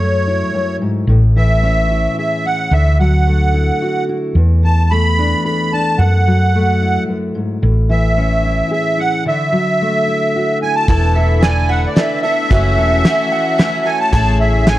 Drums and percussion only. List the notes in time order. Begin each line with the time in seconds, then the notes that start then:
10.88 kick, closed hi-hat
11.43 snare, closed hi-hat
11.97 snare, closed hi-hat
12.51 kick, closed hi-hat
13.05 snare, closed hi-hat
13.59 snare, closed hi-hat
14.13 kick, closed hi-hat
14.67 snare, closed hi-hat